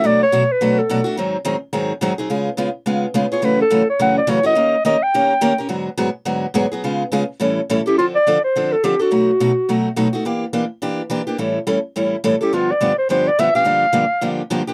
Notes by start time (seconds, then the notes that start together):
0.04 B2 F#3 A3 D4 F#4 D5
0.23 C#5
0.32 B2 F#3 A3 D4 F#4
0.52 B4
0.61 B2 F#3 A3 D4 F#4
0.79 A4
0.89 B2 F#3 A3 D4 F#4
1.04 A3 D4 F#4
1.17 G#2 D#3 F#3 C4 D#4 G#4
1.45 G#2 D#3 F#3 C4 D#4 G#4
1.73 G#2 D#3 F#3 C4 D#4 G#4
2.01 G#2 D#3 F#3 C4 D#4 G#4
2.18 F#3 C4 D#4 G#4
2.30 C#3 G#3 B3 F4 G#4
2.57 C#3 G#3 B3 F4 G#4
2.86 C#3 G#3 B3 F4 G#4
3.14 C#3 G#3 B3 F4 G#4
3.32 B3 F4 G#4 C#5
3.42 F#2 C#3 E3 A3 C#4 F#4 B4
3.62 A4
3.70 F#2 C#3 E3 A3 C#4 F#4
3.90 C#5
3.99 F#2 C#3 E3 A3 C#4 F#4 F#5
4.18 D5
4.27 F#2 C#3 E3 A3 C#4 F#4 C#5
4.43 E3 A3 C#4 F#4 D#5
4.55 D#3 A#3 C#4 G4 A#4
4.85 D#3 A#3 C#4 G4 A#4 D#5
5.03 G5
5.14 D#3 A#3 C#4 G4 A#4
5.41 D#3 A#3 C#4 G4 A#4
5.58 C#4 G4 A#4
5.69 G#2 D3 F#3 B3 F#4 G#4
5.97 G#2 D3 F#3 B3 F#4 G#4
6.25 G#2 D3 F#3 B3 F#4 G#4
6.54 G#2 D3 F#3 B3 F#4 G#4
6.72 F#3 B3 F#4 G#4
6.84 C#3 G#3 B3 F4 G#4
7.12 C#3 G#3 B3 F4 G#4
7.40 A2 E3 G3 C#4 E4 A4
7.70 A2 E3 G3 C#4 E4 A4
7.86 G3 C#4 E4 G4 A4
7.98 D3 F3 C4 D4 F4 A4
8.15 D5
8.27 D3 F3 C4 D4 A4
8.44 C5
8.56 D3 F3 C4 D4 A4
8.72 A4
8.84 D3 F3 C4 D4 G4 A4
8.99 C4 D4 F#4 A4
9.11 B2 F#3 A3 D#4 F#4
9.40 B2 F#3 A3 D#4 F#4
9.69 B2 F#3 A3 D#4 F#4
9.96 B2 F#3 A3 D#4 F#4
10.13 A3 D#4 F#4
10.25 E3 A#3 D4 G4
10.53 E3 A#3 D4 G4
10.82 E3 A#3 D4 G4
11.10 E3 A#3 D4 G4
11.27 A#3 D4 G4
11.38 A2 E3 G3 C#4 E4 A4
11.67 A2 E3 G3 C#4 E4 A4
11.96 A2 E3 G3 C#4 E4 A4
12.24 A2 E3 G3 C#4 E4 A4
12.41 G3 C#4 E4 G4 A4
12.53 G2 D3 F3 B3 D4 F4 G4
12.72 D5
12.81 G2 D3 F3 B3 D4 G4
12.98 C5
13.09 G2 D3 F3 B3 D4 G4 C5
13.28 D5
13.39 G2 D3 F3 B3 D4 G4 E5
13.55 F3 B3 D4 G4 F5
13.65 G2 D3 F3 A#3 D4 G4
13.93 G2 D3 F3 A#3 D4 G4
14.21 G2 D3 F3 A#3 D4 G4
14.50 G2 D3 F3 A#3 D4 G4
14.67 F3 A#3 D4 G4